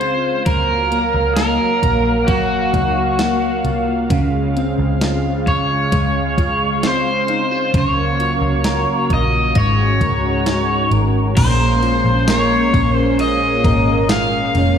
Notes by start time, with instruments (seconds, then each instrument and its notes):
Already playing: picked electric bass C#2, analog synth pad C#3 G#3 F5, clean electric guitar C#3 G#3 C4, electric slide guitar C5, glockenspiel G#6
0.01 clean electric guitar F4, closed hi-hat
0.45 picked electric bass C#2, analog synth pad F#3 A#3, electric slide guitar A#4, kick, closed hi-hat
0.91 clean electric guitar A#3, closed hi-hat
1.14 picked electric bass C#2
1.37 clean electric guitar D#4, electric slide guitar A#4, snare, closed hi-hat
1.83 picked electric bass A#1, clean electric guitar A#3, kick, closed hi-hat
2.27 clean electric guitar F#3, electric slide guitar F#4, kick, closed hi-hat
2.74 picked electric bass C#2, clean electric guitar D#4, kick, closed hi-hat
3.19 clean electric guitar A#3, snare, closed hi-hat
3.64 picked electric bass C2, clean electric guitar F4, closed hi-hat
4.10 picked electric bass C#2, analog synth pad C#3 G#3, clean electric guitar C#3, kick, closed hi-hat
4.56 clean electric guitar C4, closed hi-hat
4.79 picked electric bass C#2
5.01 clean electric guitar F4, snare, closed hi-hat
5.47 electric slide guitar C#5, kick, closed hi-hat
5.92 picked electric bass C#2, clean electric guitar G#3, kick, closed hi-hat
6.38 clean electric guitar F4, kick, closed hi-hat
6.83 clean electric guitar C4, electric slide guitar C5, glockenspiel C7, snare, closed hi-hat
7.28 clean electric guitar D#4, closed hi-hat
7.51 clean electric guitar F4
7.74 picked electric bass C#2, clean electric guitar C#3, analog synth pad F#3 A#3, kick, closed hi-hat
7.78 electric slide guitar C#5
8.19 clean electric guitar F4, closed hi-hat
8.41 picked electric bass C#2
8.64 clean electric guitar A#4, snare, closed hi-hat
9.10 picked electric bass A#1, clean electric guitar F4, electric slide guitar D#5, kick, closed hi-hat
9.55 picked electric bass G#1, clean electric guitar G#2, analog synth pad G#3 C#4 F#4, electric slide guitar C#5, glockenspiel A#6, kick, closed hi-hat
10.01 picked electric bass C#2, clean electric guitar A#4, kick, closed hi-hat
10.46 clean electric guitar D#4, snare, closed hi-hat
10.91 picked electric bass G#1, clean electric guitar A#4, closed hi-hat
11.36 picked electric bass A#1, clean electric guitar A#2 A#4, analog synth pad G#3 A#3 C#4, electric slide guitar C5, kick, crash, ride
11.82 clean electric guitar F4, ride
12.05 picked electric bass A#1
12.28 clean electric guitar A#4, electric slide guitar C#5, glockenspiel C7, snare, ride, tambourine
12.74 picked electric bass A#1, clean electric guitar C#4, kick, ride
12.93 electric slide guitar C5
13.18 clean electric guitar F4, electric slide guitar D#5, ride
13.64 picked electric bass G#1, clean electric guitar A#4, kick, ride
14.09 clean electric guitar F4, electric slide guitar F5, snare, ride, tambourine
14.55 picked electric bass F1, clean electric guitar C#4, ride